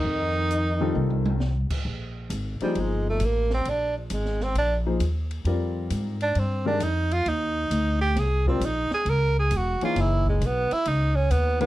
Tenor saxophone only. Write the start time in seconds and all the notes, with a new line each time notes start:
Already playing: D#4
2.62 G3
2.80 G#3
3.09 A3
3.25 A#3
3.54 C4
3.69 D4
3.97 F3
4.13 G#3
4.43 C4
4.58 D4
6.22 D4
6.39 C4
6.67 D4
6.83 D#4
7.13 F4
7.28 D#4
8.01 G4
8.19 G#4
8.48 C4
8.65 D#4
8.94 G#4
9.09 A#4
9.39 G#4
9.56 F#4
9.85 F4
10.01 E4
10.29 G#3
10.46 B3
10.73 E4
10.88 D#4
11.15 C#4
11.31 B3
11.61 B3